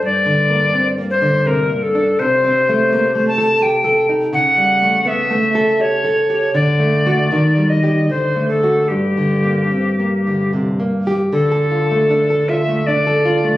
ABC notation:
X:1
M:3/4
L:1/16
Q:1/4=81
K:Gm
V:1 name="Recorder"
d6 c2 B2 A2 | c6 a2 g2 z2 | ^f4 =e4 ^c4 | d6 e2 c2 A2 |
G8 z4 | [K:Dm] A6 e2 d4 |]
V:2 name="Nylon-string guitar"
(3G,,2 D,2 B,2 (3C2 B,2 D,2 (3C,2 B,2 D2 | (3C,2 C2 A,2 (3B,2 A,2 A2 (3G2 A2 E2 | (3^C,2 G,2 A,2 (3=B,2 A,2 A2 (3G2 A2 G2 | (3D,2 A,2 [A,^F]2 (3E,2 G,2 [G,G]2 (3D,2 A,2 [A,F]2 |
(3G,,2 D,2 B,2 (3C2 B,2 D,2 (3C,2 B,2 G2 | [K:Dm] D, A F A, D A F A, D A F A, |]